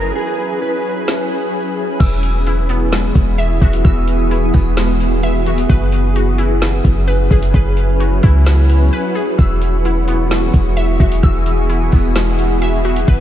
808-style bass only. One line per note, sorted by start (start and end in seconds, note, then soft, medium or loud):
0.00 0.12 F#1 loud
2.00 3.12 E1 loud
3.15 3.60 E1 loud
3.61 3.84 E1 loud
3.85 4.51 E1 loud
4.54 5.66 E1 loud
5.69 6.81 F#1 loud
6.85 7.29 F#1 loud
7.31 7.53 F#1 loud
7.54 8.21 F#1 loud
8.24 8.90 C#2 loud
9.39 10.50 E1 loud
10.54 10.98 E1 loud
11.00 11.22 E1 loud
11.23 11.90 E1 loud
11.93 13.04 E1 loud
13.08 13.20 F#1 loud